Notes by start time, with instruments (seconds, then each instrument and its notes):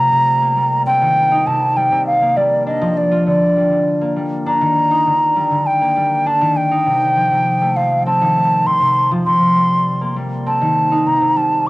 Already playing: harp C3 G3 A3 C4 F4, flute A#5
0.12 harp C3
0.42 harp A#3
0.57 harp G3
0.87 harp C4, flute G5
1.02 harp D#3
1.32 harp D#4
1.47 harp C3, flute A5
1.77 harp G3, flute G5
1.92 harp C3
2.06 flute F5
2.22 harp A#3
2.37 harp G3, flute D5
2.67 harp D4, flute D#5
2.82 harp F3
2.97 flute D5
3.12 harp F4
3.27 harp D3, flute D5
3.57 harp G3
3.72 harp D3
4.01 harp A#3
4.16 harp G3
4.46 harp D4, flute A#5
4.61 harp D#3
4.91 harp D#4
5.06 harp D3
5.36 harp G3
5.51 harp D3
5.66 flute G5
5.81 harp A#3
5.96 harp G3
6.26 harp D4, flute A5
6.41 harp D#3
6.57 flute G5
6.71 harp D#4
6.86 harp C3
7.16 harp F3
7.31 harp C3
7.61 harp A3
7.76 harp F3, flute F5
8.06 harp C4, flute A5
8.21 harp D#3
8.36 harp A3
8.66 harp C3, flute C6
8.81 harp C3
9.11 harp F3
9.26 harp C3, flute C6
9.41 harp C3
9.56 harp G3
10.01 harp A#3
10.16 harp G3
10.46 harp C4, flute A5
10.61 harp D#3
10.92 harp D#4
11.06 harp C3, flute A#5
11.21 harp C3
11.36 harp G3, flute A5